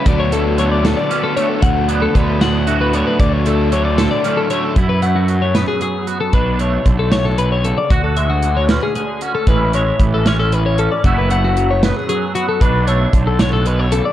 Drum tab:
HH |xxxxxx|xxxxxx|xxxxxx|xxxxxx|
SD |---o--|---o--|---o--|---o--|
BD |o-----|o-o---|o-----|o-----|

HH |xxxxxx|xxxxxx|xxxxxx|xxxxxx|
SD |---o--|---o--|---o--|---o--|
BD |o-o---|o-----|o-o---|o-----|

HH |xxxxxx|
SD |---o--|
BD |o-o---|